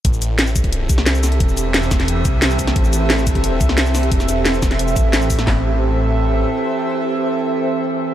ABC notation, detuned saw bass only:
X:1
M:4/4
L:1/8
Q:1/4=177
K:Am
V:1 name="Detuned saw bass" clef=bass
A,,,4- A,,, C,,3 | E,,,4- E,,, C,,3 | A,,,4- A,,, C,,3 | E,,,4- E,,, A,,,3 |
A,,,6 z2 | z8 |]